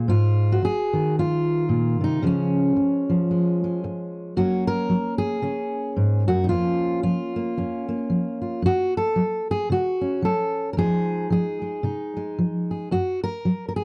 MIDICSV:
0, 0, Header, 1, 3, 480
1, 0, Start_track
1, 0, Tempo, 534283
1, 83, Time_signature, 4, 2, 24, 8
1, 12435, End_track
2, 0, Start_track
2, 0, Title_t, "Steel-string acoustic guitar"
2, 0, Program_c, 0, 25
2, 0, Note_on_c, 0, 56, 58
2, 72, Note_on_c, 0, 44, 76
2, 85, Note_on_c, 0, 65, 99
2, 470, Note_on_c, 0, 66, 90
2, 497, Note_off_c, 0, 56, 0
2, 549, Note_off_c, 0, 44, 0
2, 564, Note_off_c, 0, 65, 0
2, 582, Note_on_c, 0, 68, 102
2, 838, Note_on_c, 0, 51, 59
2, 1044, Note_off_c, 0, 66, 0
2, 1052, Note_off_c, 0, 68, 0
2, 1071, Note_on_c, 0, 65, 96
2, 1517, Note_on_c, 0, 46, 63
2, 1799, Note_off_c, 0, 46, 0
2, 1803, Note_on_c, 0, 48, 57
2, 1831, Note_on_c, 0, 63, 84
2, 1994, Note_off_c, 0, 48, 0
2, 1997, Note_off_c, 0, 51, 0
2, 1998, Note_on_c, 0, 49, 76
2, 2004, Note_on_c, 0, 53, 50
2, 2008, Note_on_c, 0, 56, 50
2, 2013, Note_off_c, 0, 63, 0
2, 2016, Note_off_c, 0, 65, 0
2, 2036, Note_on_c, 0, 61, 84
2, 2473, Note_off_c, 0, 49, 0
2, 2767, Note_off_c, 0, 53, 0
2, 2780, Note_on_c, 0, 53, 59
2, 2961, Note_off_c, 0, 56, 0
2, 2971, Note_on_c, 0, 56, 48
2, 3253, Note_off_c, 0, 56, 0
2, 3269, Note_on_c, 0, 56, 45
2, 3904, Note_off_c, 0, 53, 0
2, 3922, Note_on_c, 0, 42, 74
2, 3925, Note_on_c, 0, 66, 89
2, 3930, Note_off_c, 0, 61, 0
2, 3930, Note_on_c, 0, 54, 51
2, 3932, Note_off_c, 0, 56, 0
2, 3936, Note_on_c, 0, 58, 50
2, 3944, Note_on_c, 0, 61, 53
2, 4196, Note_off_c, 0, 66, 0
2, 4199, Note_on_c, 0, 70, 98
2, 4363, Note_off_c, 0, 42, 0
2, 4386, Note_off_c, 0, 54, 0
2, 4397, Note_on_c, 0, 54, 61
2, 4652, Note_off_c, 0, 70, 0
2, 4656, Note_on_c, 0, 68, 92
2, 4840, Note_off_c, 0, 54, 0
2, 4870, Note_on_c, 0, 49, 64
2, 4872, Note_off_c, 0, 61, 0
2, 4876, Note_on_c, 0, 61, 47
2, 5317, Note_off_c, 0, 49, 0
2, 5359, Note_on_c, 0, 44, 63
2, 5632, Note_off_c, 0, 68, 0
2, 5639, Note_on_c, 0, 66, 104
2, 5644, Note_off_c, 0, 44, 0
2, 5648, Note_on_c, 0, 42, 61
2, 5782, Note_off_c, 0, 61, 0
2, 5786, Note_on_c, 0, 63, 75
2, 5826, Note_off_c, 0, 58, 0
2, 5826, Note_off_c, 0, 66, 0
2, 5830, Note_on_c, 0, 65, 106
2, 5839, Note_off_c, 0, 63, 0
2, 5842, Note_off_c, 0, 42, 0
2, 5846, Note_on_c, 0, 41, 71
2, 5853, Note_on_c, 0, 53, 52
2, 5858, Note_on_c, 0, 58, 49
2, 5870, Note_on_c, 0, 61, 49
2, 6285, Note_off_c, 0, 41, 0
2, 6305, Note_off_c, 0, 65, 0
2, 6309, Note_off_c, 0, 53, 0
2, 6318, Note_on_c, 0, 65, 88
2, 6319, Note_on_c, 0, 53, 60
2, 6601, Note_off_c, 0, 58, 0
2, 6612, Note_on_c, 0, 58, 46
2, 6762, Note_off_c, 0, 53, 0
2, 6804, Note_on_c, 0, 41, 63
2, 6807, Note_off_c, 0, 61, 0
2, 6811, Note_on_c, 0, 61, 46
2, 7072, Note_off_c, 0, 58, 0
2, 7083, Note_on_c, 0, 58, 48
2, 7244, Note_off_c, 0, 41, 0
2, 7274, Note_on_c, 0, 53, 61
2, 7550, Note_off_c, 0, 65, 0
2, 7561, Note_on_c, 0, 65, 46
2, 7719, Note_off_c, 0, 53, 0
2, 7736, Note_off_c, 0, 58, 0
2, 7743, Note_off_c, 0, 61, 0
2, 7747, Note_on_c, 0, 42, 76
2, 7758, Note_off_c, 0, 65, 0
2, 7778, Note_on_c, 0, 66, 106
2, 8056, Note_off_c, 0, 66, 0
2, 8060, Note_on_c, 0, 69, 98
2, 8195, Note_off_c, 0, 42, 0
2, 8227, Note_on_c, 0, 54, 58
2, 8534, Note_off_c, 0, 69, 0
2, 8543, Note_on_c, 0, 68, 96
2, 8675, Note_off_c, 0, 54, 0
2, 8711, Note_on_c, 0, 49, 63
2, 8727, Note_off_c, 0, 68, 0
2, 8731, Note_on_c, 0, 66, 91
2, 8995, Note_on_c, 0, 61, 47
2, 9157, Note_off_c, 0, 49, 0
2, 9184, Note_on_c, 0, 54, 63
2, 9203, Note_off_c, 0, 66, 0
2, 9207, Note_on_c, 0, 69, 93
2, 9633, Note_off_c, 0, 69, 0
2, 9634, Note_off_c, 0, 54, 0
2, 9641, Note_on_c, 0, 70, 77
2, 9651, Note_off_c, 0, 61, 0
2, 9676, Note_on_c, 0, 41, 76
2, 9682, Note_on_c, 0, 53, 51
2, 9685, Note_off_c, 0, 70, 0
2, 9687, Note_on_c, 0, 56, 52
2, 9689, Note_on_c, 0, 68, 102
2, 9692, Note_on_c, 0, 63, 51
2, 10119, Note_off_c, 0, 41, 0
2, 10144, Note_off_c, 0, 53, 0
2, 10155, Note_on_c, 0, 53, 64
2, 10161, Note_off_c, 0, 68, 0
2, 10172, Note_on_c, 0, 68, 83
2, 10425, Note_off_c, 0, 56, 0
2, 10436, Note_on_c, 0, 56, 43
2, 10599, Note_off_c, 0, 53, 0
2, 10627, Note_off_c, 0, 63, 0
2, 10628, Note_on_c, 0, 48, 61
2, 10638, Note_on_c, 0, 63, 48
2, 10918, Note_off_c, 0, 56, 0
2, 10929, Note_on_c, 0, 56, 47
2, 11075, Note_off_c, 0, 48, 0
2, 11126, Note_off_c, 0, 68, 0
2, 11126, Note_on_c, 0, 53, 58
2, 11417, Note_on_c, 0, 68, 47
2, 11564, Note_off_c, 0, 53, 0
2, 11575, Note_off_c, 0, 63, 0
2, 11582, Note_off_c, 0, 68, 0
2, 11601, Note_off_c, 0, 56, 0
2, 11601, Note_on_c, 0, 42, 76
2, 11608, Note_on_c, 0, 66, 97
2, 11886, Note_off_c, 0, 66, 0
2, 11890, Note_on_c, 0, 70, 98
2, 12041, Note_off_c, 0, 42, 0
2, 12084, Note_on_c, 0, 54, 59
2, 12283, Note_off_c, 0, 70, 0
2, 12294, Note_on_c, 0, 70, 69
2, 12360, Note_off_c, 0, 70, 0
2, 12363, Note_on_c, 0, 68, 89
2, 12435, Note_off_c, 0, 54, 0
2, 12435, Note_off_c, 0, 68, 0
2, 12435, End_track
3, 0, Start_track
3, 0, Title_t, "Muted steel-string acoustic guitar strokes"
3, 558, Note_on_c, 9, 29, 60
3, 648, Note_off_c, 9, 29, 0
3, 2480, Note_on_c, 9, 29, 59
3, 2570, Note_off_c, 9, 29, 0
3, 3448, Note_on_c, 9, 29, 62
3, 3538, Note_off_c, 9, 29, 0
3, 12435, End_track
0, 0, End_of_file